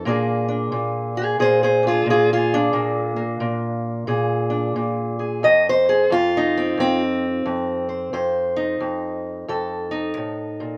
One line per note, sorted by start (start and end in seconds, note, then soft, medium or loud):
0.05 0.71 A#2 medium
0.05 2.72 A#3 soft
0.05 0.48 D4 soft
0.05 1.17 G#4 soft
0.05 1.17 D5 soft
0.48 1.82 D4 medium
0.72 1.39 A#2 medium
1.17 1.39 G#4 medium
1.17 1.39 C5 medium
1.39 2.05 A#2 medium
1.39 1.62 G#4 medium
1.39 1.63 C5 medium
1.63 1.85 G#4 medium
1.63 1.85 C5 medium
1.83 2.52 D4 soft
1.83 2.08 F4 medium
1.88 2.09 G#4 medium
2.06 2.72 A#2 medium
2.10 2.31 F4 medium
2.10 2.31 G#4 medium
2.33 2.53 F4 medium
2.33 3.21 G#4 medium
2.54 4.49 D4 medium
2.73 3.39 A#2 medium
2.73 3.15 A#3 soft
3.16 5.40 A#3 soft
3.40 4.06 A#2 medium
4.07 4.75 A#2 medium
4.07 5.18 G#4 soft
4.50 5.40 D4 soft
4.76 5.43 A#2 medium
5.19 5.41 G#4 soft
5.43 6.10 F2 medium
5.43 5.66 D#5 medium
5.69 6.12 C5 medium
5.89 6.11 G#4 medium
6.10 6.77 F2 medium
6.10 7.02 F4 loud
6.37 7.25 D#4 medium
6.57 6.79 C4 medium
6.78 7.44 F2 medium
6.78 8.14 C4 loud
7.46 8.12 F2 medium
7.89 8.13 C5 soft
8.13 8.79 F2 medium
8.13 10.77 C5 medium
8.56 9.90 D#4 medium
8.80 9.47 F2 medium
9.48 10.16 F2 medium
9.48 10.77 A4 medium
9.91 10.77 D#4 medium
10.17 10.59 A2 medium
10.60 10.77 A#2 medium